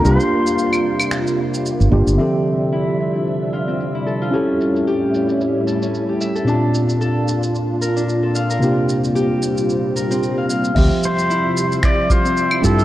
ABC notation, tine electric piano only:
X:1
M:4/4
L:1/8
Q:"Swing 16ths" 1/4=112
K:Dm
V:1 name="Tine electric piano"
[B,DFG]6- [B,DFG] [B,DFG] | [D,F,CGAe]8 | [^CEGA]8 | [B,,CDFa]8 |
[C,B,DFG]8 | [F,CGe]6- [F,CGe] [CEFG] |]